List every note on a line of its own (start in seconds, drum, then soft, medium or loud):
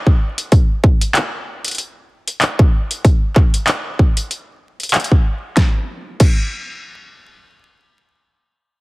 0.07 kick medium
0.38 closed hi-hat medium
0.52 kick loud
0.52 closed hi-hat soft
0.84 kick medium
1.01 closed hi-hat medium
1.15 clap loud
1.15 closed hi-hat soft
1.65 closed hi-hat medium
1.68 closed hi-hat soft
1.71 closed hi-hat soft
1.75 closed hi-hat soft
1.78 closed hi-hat soft
2.28 closed hi-hat medium
2.42 clap loud
2.42 closed hi-hat soft
2.59 kick medium
2.91 closed hi-hat medium
3.05 kick loud
3.05 closed hi-hat soft
3.36 kick medium
3.36 clap soft
3.54 closed hi-hat medium
3.68 clap loud
3.68 closed hi-hat medium
3.99 kick medium
4.17 closed hi-hat medium
4.31 closed hi-hat soft
4.80 closed hi-hat soft
4.83 closed hi-hat soft
4.89 closed hi-hat soft
4.94 clap loud
4.94 closed hi-hat medium
5.00 closed hi-hat soft
5.04 closed hi-hat medium
5.12 kick medium
5.57 kick loud
5.57 snare medium
5.57 closed hi-hat medium
6.20 kick loud
6.20 closed hi-hat medium
6.20 crash medium